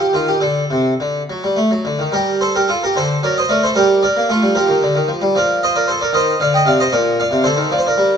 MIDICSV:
0, 0, Header, 1, 2, 480
1, 0, Start_track
1, 0, Key_signature, -2, "minor"
1, 0, Tempo, 579151
1, 346, Time_signature, 6, 3, 24, 8
1, 1306, Tempo, 549954
1, 2746, Tempo, 528169
1, 7242, End_track
2, 0, Start_track
2, 0, Title_t, "Harpsichord"
2, 0, Program_c, 0, 6
2, 0, Note_on_c, 0, 67, 50
2, 109, Note_on_c, 0, 51, 35
2, 111, Note_off_c, 0, 67, 0
2, 120, Note_on_c, 0, 65, 59
2, 232, Note_off_c, 0, 65, 0
2, 236, Note_on_c, 0, 67, 54
2, 281, Note_off_c, 0, 51, 0
2, 335, Note_on_c, 0, 50, 46
2, 342, Note_on_c, 0, 69, 58
2, 351, Note_off_c, 0, 67, 0
2, 514, Note_off_c, 0, 50, 0
2, 584, Note_on_c, 0, 48, 42
2, 760, Note_off_c, 0, 48, 0
2, 831, Note_on_c, 0, 50, 36
2, 959, Note_off_c, 0, 69, 0
2, 1003, Note_off_c, 0, 50, 0
2, 1074, Note_on_c, 0, 54, 39
2, 1184, Note_off_c, 0, 54, 0
2, 1192, Note_on_c, 0, 55, 37
2, 1295, Note_on_c, 0, 57, 37
2, 1302, Note_off_c, 0, 55, 0
2, 1418, Note_off_c, 0, 57, 0
2, 1423, Note_on_c, 0, 54, 35
2, 1545, Note_off_c, 0, 54, 0
2, 1545, Note_on_c, 0, 50, 39
2, 1666, Note_off_c, 0, 50, 0
2, 1668, Note_on_c, 0, 51, 35
2, 1784, Note_on_c, 0, 55, 56
2, 1786, Note_off_c, 0, 51, 0
2, 1793, Note_on_c, 0, 70, 74
2, 1803, Note_on_c, 0, 67, 59
2, 2020, Note_off_c, 0, 67, 0
2, 2032, Note_off_c, 0, 70, 0
2, 2034, Note_on_c, 0, 72, 83
2, 2039, Note_on_c, 0, 69, 61
2, 2147, Note_off_c, 0, 69, 0
2, 2153, Note_off_c, 0, 72, 0
2, 2162, Note_on_c, 0, 70, 70
2, 2165, Note_on_c, 0, 67, 53
2, 2271, Note_off_c, 0, 67, 0
2, 2272, Note_on_c, 0, 69, 73
2, 2277, Note_off_c, 0, 70, 0
2, 2281, Note_on_c, 0, 65, 53
2, 2302, Note_off_c, 0, 55, 0
2, 2388, Note_off_c, 0, 65, 0
2, 2391, Note_off_c, 0, 69, 0
2, 2405, Note_on_c, 0, 70, 76
2, 2423, Note_on_c, 0, 67, 56
2, 2512, Note_on_c, 0, 50, 50
2, 2517, Note_off_c, 0, 70, 0
2, 2519, Note_off_c, 0, 67, 0
2, 2519, Note_on_c, 0, 72, 76
2, 2529, Note_on_c, 0, 69, 55
2, 2681, Note_off_c, 0, 50, 0
2, 2715, Note_off_c, 0, 72, 0
2, 2739, Note_off_c, 0, 69, 0
2, 2752, Note_on_c, 0, 54, 49
2, 2754, Note_on_c, 0, 74, 70
2, 2761, Note_on_c, 0, 70, 57
2, 2867, Note_off_c, 0, 70, 0
2, 2871, Note_off_c, 0, 74, 0
2, 2883, Note_on_c, 0, 75, 64
2, 2901, Note_on_c, 0, 72, 52
2, 2924, Note_off_c, 0, 54, 0
2, 2987, Note_on_c, 0, 57, 44
2, 2989, Note_on_c, 0, 74, 70
2, 2996, Note_off_c, 0, 75, 0
2, 2998, Note_off_c, 0, 72, 0
2, 2998, Note_on_c, 0, 70, 59
2, 3106, Note_off_c, 0, 70, 0
2, 3110, Note_off_c, 0, 74, 0
2, 3116, Note_on_c, 0, 72, 81
2, 3130, Note_on_c, 0, 69, 57
2, 3162, Note_off_c, 0, 57, 0
2, 3223, Note_on_c, 0, 55, 58
2, 3231, Note_on_c, 0, 70, 76
2, 3234, Note_off_c, 0, 69, 0
2, 3235, Note_off_c, 0, 72, 0
2, 3240, Note_on_c, 0, 67, 61
2, 3462, Note_off_c, 0, 67, 0
2, 3474, Note_off_c, 0, 70, 0
2, 3475, Note_on_c, 0, 74, 87
2, 3488, Note_off_c, 0, 55, 0
2, 3489, Note_on_c, 0, 70, 65
2, 3601, Note_on_c, 0, 58, 55
2, 3680, Note_off_c, 0, 74, 0
2, 3707, Note_off_c, 0, 70, 0
2, 3713, Note_off_c, 0, 58, 0
2, 3717, Note_on_c, 0, 57, 44
2, 3722, Note_on_c, 0, 69, 76
2, 3734, Note_on_c, 0, 65, 52
2, 3831, Note_off_c, 0, 57, 0
2, 3837, Note_on_c, 0, 55, 54
2, 3925, Note_off_c, 0, 69, 0
2, 3950, Note_off_c, 0, 65, 0
2, 3950, Note_on_c, 0, 53, 53
2, 3951, Note_off_c, 0, 55, 0
2, 3953, Note_on_c, 0, 70, 66
2, 3968, Note_on_c, 0, 67, 56
2, 4067, Note_on_c, 0, 51, 47
2, 4068, Note_off_c, 0, 53, 0
2, 4188, Note_off_c, 0, 51, 0
2, 4199, Note_on_c, 0, 50, 51
2, 4314, Note_off_c, 0, 50, 0
2, 4314, Note_on_c, 0, 51, 46
2, 4432, Note_off_c, 0, 51, 0
2, 4432, Note_on_c, 0, 53, 52
2, 4550, Note_off_c, 0, 53, 0
2, 4554, Note_on_c, 0, 55, 57
2, 4569, Note_off_c, 0, 70, 0
2, 4649, Note_off_c, 0, 67, 0
2, 4671, Note_off_c, 0, 55, 0
2, 4679, Note_on_c, 0, 53, 55
2, 4688, Note_on_c, 0, 74, 88
2, 4701, Note_on_c, 0, 70, 59
2, 4887, Note_off_c, 0, 74, 0
2, 4913, Note_off_c, 0, 70, 0
2, 4934, Note_on_c, 0, 75, 93
2, 4944, Note_on_c, 0, 72, 66
2, 5043, Note_off_c, 0, 72, 0
2, 5045, Note_off_c, 0, 75, 0
2, 5047, Note_on_c, 0, 74, 85
2, 5053, Note_on_c, 0, 70, 64
2, 5156, Note_on_c, 0, 72, 78
2, 5157, Note_off_c, 0, 70, 0
2, 5162, Note_off_c, 0, 74, 0
2, 5177, Note_on_c, 0, 69, 59
2, 5196, Note_off_c, 0, 53, 0
2, 5277, Note_off_c, 0, 72, 0
2, 5277, Note_on_c, 0, 74, 78
2, 5279, Note_off_c, 0, 69, 0
2, 5291, Note_on_c, 0, 70, 61
2, 5385, Note_on_c, 0, 51, 59
2, 5395, Note_on_c, 0, 75, 94
2, 5396, Note_off_c, 0, 70, 0
2, 5397, Note_off_c, 0, 74, 0
2, 5403, Note_on_c, 0, 72, 65
2, 5563, Note_off_c, 0, 51, 0
2, 5624, Note_off_c, 0, 72, 0
2, 5632, Note_on_c, 0, 50, 57
2, 5636, Note_off_c, 0, 75, 0
2, 5639, Note_on_c, 0, 77, 82
2, 5654, Note_on_c, 0, 74, 64
2, 5758, Note_off_c, 0, 74, 0
2, 5758, Note_off_c, 0, 77, 0
2, 5759, Note_on_c, 0, 79, 79
2, 5768, Note_on_c, 0, 75, 53
2, 5807, Note_off_c, 0, 50, 0
2, 5861, Note_on_c, 0, 48, 55
2, 5870, Note_on_c, 0, 77, 86
2, 5875, Note_off_c, 0, 75, 0
2, 5878, Note_off_c, 0, 79, 0
2, 5882, Note_on_c, 0, 74, 62
2, 5991, Note_off_c, 0, 74, 0
2, 5993, Note_off_c, 0, 77, 0
2, 5995, Note_on_c, 0, 75, 93
2, 6005, Note_on_c, 0, 72, 66
2, 6039, Note_off_c, 0, 48, 0
2, 6105, Note_on_c, 0, 46, 60
2, 6109, Note_on_c, 0, 74, 83
2, 6112, Note_off_c, 0, 72, 0
2, 6115, Note_off_c, 0, 75, 0
2, 6115, Note_on_c, 0, 70, 67
2, 6313, Note_off_c, 0, 74, 0
2, 6336, Note_off_c, 0, 70, 0
2, 6356, Note_on_c, 0, 77, 104
2, 6364, Note_on_c, 0, 74, 70
2, 6365, Note_off_c, 0, 46, 0
2, 6459, Note_on_c, 0, 48, 59
2, 6556, Note_off_c, 0, 77, 0
2, 6572, Note_on_c, 0, 50, 58
2, 6576, Note_on_c, 0, 72, 86
2, 6578, Note_off_c, 0, 48, 0
2, 6580, Note_off_c, 0, 74, 0
2, 6589, Note_on_c, 0, 69, 63
2, 6688, Note_on_c, 0, 51, 57
2, 6694, Note_off_c, 0, 50, 0
2, 6810, Note_off_c, 0, 69, 0
2, 6811, Note_off_c, 0, 51, 0
2, 6821, Note_off_c, 0, 72, 0
2, 6824, Note_on_c, 0, 53, 62
2, 6833, Note_on_c, 0, 74, 73
2, 6888, Note_on_c, 0, 72, 68
2, 6892, Note_off_c, 0, 74, 0
2, 6951, Note_off_c, 0, 72, 0
2, 6961, Note_on_c, 0, 74, 68
2, 6975, Note_on_c, 0, 70, 51
2, 6997, Note_off_c, 0, 53, 0
2, 7063, Note_on_c, 0, 55, 56
2, 7238, Note_off_c, 0, 55, 0
2, 7242, Note_off_c, 0, 70, 0
2, 7242, Note_off_c, 0, 74, 0
2, 7242, End_track
0, 0, End_of_file